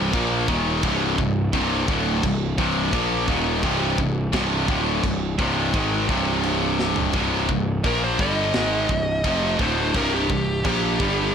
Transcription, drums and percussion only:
0.13 kick, china
0.48 kick
0.83 kick, china
1.18 kick
1.53 kick, china
1.88 kick
2.23 kick, china
2.58 kick
2.93 kick, china
3.28 kick
3.63 kick, china
3.98 kick
4.33 kick, snare, china
4.68 kick
5.04 kick, china
5.39 kick
5.74 kick, china
6.09 kick
6.43 china
6.79 snare
6.96 floor tom
7.13 kick, china
7.49 kick
7.84 kick, china
8.19 kick
8.53 snare, china
8.89 kick
9.24 kick, china
9.59 kick
9.94 kick, china
10.30 kick
10.65 kick, china
11.00 kick

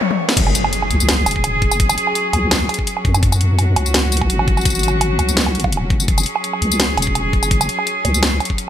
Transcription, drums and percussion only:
0.01 high tom
0.11 high tom
0.29 snare
0.37 kick, closed hi-hat, crash
0.47 low woodblock
0.55 closed hi-hat, tambourine
0.64 low woodblock
0.73 closed hi-hat
0.82 low woodblock
0.91 closed hi-hat
1.00 tambourine
1.09 snare, closed hi-hat, low woodblock
1.26 closed hi-hat, tambourine, low woodblock
1.31 closed hi-hat
1.36 kick
1.44 closed hi-hat, low woodblock
1.62 kick, closed hi-hat
1.71 tambourine, low woodblock
1.80 kick, closed hi-hat
1.89 tambourine, low woodblock
1.98 closed hi-hat
2.07 low woodblock
2.15 closed hi-hat
2.33 closed hi-hat, low woodblock
2.51 snare, closed hi-hat, low woodblock
2.69 closed hi-hat, low woodblock
2.74 closed hi-hat
2.79 kick
2.87 closed hi-hat
2.97 low woodblock
3.05 kick, closed hi-hat
3.14 tambourine, low woodblock
3.23 kick, closed hi-hat
3.32 tambourine, low woodblock
3.41 closed hi-hat
3.59 closed hi-hat, low woodblock
3.76 closed hi-hat, low woodblock
3.86 tambourine
3.94 snare, closed hi-hat, low woodblock
4.12 closed hi-hat, tambourine
4.17 closed hi-hat
4.21 kick, low woodblock
4.30 closed hi-hat
4.39 low woodblock
4.48 kick, closed hi-hat
4.57 tambourine, low woodblock
4.61 tambourine
4.65 kick, closed hi-hat, tambourine
4.70 tambourine
4.75 tambourine
4.79 tambourine
4.83 closed hi-hat, tambourine
4.88 tambourine, low woodblock
5.01 closed hi-hat, low woodblock
5.19 closed hi-hat, low woodblock
5.29 tambourine
5.37 snare, closed hi-hat
5.46 low woodblock
5.55 closed hi-hat
5.60 closed hi-hat
5.64 kick, low woodblock
5.72 closed hi-hat
5.77 low woodblock
5.90 kick, closed hi-hat
6.00 tambourine
6.08 kick, closed hi-hat
6.18 tambourine, low woodblock
6.20 tambourine
6.23 closed hi-hat, tambourine
6.36 low woodblock
6.44 closed hi-hat
6.53 low woodblock
6.62 closed hi-hat
6.72 tambourine
6.80 snare, closed hi-hat, low woodblock
6.97 closed hi-hat, low woodblock
7.02 closed hi-hat, tambourine
7.07 kick
7.15 closed hi-hat, low woodblock
7.33 kick, closed hi-hat
7.43 tambourine, low woodblock
7.51 kick, closed hi-hat
7.61 tambourine, low woodblock
7.69 closed hi-hat
7.79 low woodblock
7.87 closed hi-hat
8.05 closed hi-hat, low woodblock
8.14 tambourine
8.23 snare, closed hi-hat, low woodblock
8.40 closed hi-hat, low woodblock
8.45 closed hi-hat
8.50 kick
8.58 closed hi-hat

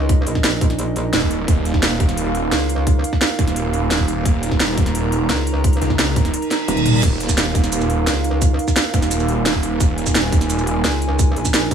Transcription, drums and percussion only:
0.09 kick, closed hi-hat
0.27 closed hi-hat
0.35 kick, snare
0.44 snare, closed hi-hat
0.61 kick, closed hi-hat
0.70 snare, closed hi-hat
0.79 closed hi-hat
0.96 closed hi-hat
1.13 snare, closed hi-hat
1.22 kick
1.31 closed hi-hat
1.48 kick, closed hi-hat
1.65 closed hi-hat
1.74 kick, snare
1.83 snare, closed hi-hat
2.00 kick, closed hi-hat
2.09 snare, closed hi-hat
2.17 closed hi-hat
2.35 closed hi-hat
2.52 snare, closed hi-hat
2.69 closed hi-hat
2.87 kick, closed hi-hat
3.04 closed hi-hat
3.13 kick, snare
3.21 snare, closed hi-hat
3.39 kick, closed hi-hat
3.47 snare, closed hi-hat
3.56 closed hi-hat
3.73 closed hi-hat
3.91 snare, closed hi-hat
4.00 kick
4.08 closed hi-hat
4.25 kick, closed hi-hat
4.43 closed hi-hat
4.52 kick, snare
4.60 snare, closed hi-hat
4.77 kick, closed hi-hat
4.86 snare, closed hi-hat
4.95 closed hi-hat
5.12 closed hi-hat
5.29 snare, closed hi-hat
5.47 closed hi-hat
5.64 kick, closed hi-hat
5.73 closed hi-hat
5.82 closed hi-hat
5.90 kick, snare
5.99 snare, closed hi-hat
6.16 kick, closed hi-hat
6.25 snare, closed hi-hat
6.34 closed hi-hat
6.42 closed hi-hat
6.51 snare, closed hi-hat
6.68 closed hi-hat, mid tom
6.77 closed hi-hat, mid tom
6.86 closed hi-hat, mid tom
6.94 mid tom
7.03 kick, closed hi-hat, crash, shaker
7.20 closed hi-hat
7.29 kick, snare, shaker
7.38 snare, closed hi-hat, shaker
7.55 kick, closed hi-hat, shaker
7.64 snare, closed hi-hat, shaker
7.72 closed hi-hat, shaker
7.81 shaker
7.90 closed hi-hat
8.07 snare, closed hi-hat, shaker
8.24 closed hi-hat
8.42 kick, closed hi-hat, shaker
8.59 closed hi-hat
8.68 kick, snare, shaker
8.76 snare, closed hi-hat, shaker
8.94 kick, closed hi-hat, shaker
9.02 snare, closed hi-hat, shaker
9.11 closed hi-hat, shaker
9.20 shaker
9.28 closed hi-hat
9.46 snare, closed hi-hat, shaker
9.54 kick
9.63 closed hi-hat
9.80 kick, closed hi-hat, shaker
9.98 closed hi-hat
10.06 kick, snare, shaker
10.15 snare, closed hi-hat, shaker
10.32 kick, closed hi-hat, shaker
10.41 snare, closed hi-hat, shaker
10.50 closed hi-hat, shaker
10.58 shaker
10.67 closed hi-hat
10.84 snare, closed hi-hat, shaker
11.02 closed hi-hat
11.19 kick, closed hi-hat, shaker
11.36 closed hi-hat
11.45 kick, snare, shaker
11.54 snare, closed hi-hat, shaker
11.71 kick, closed hi-hat, shaker

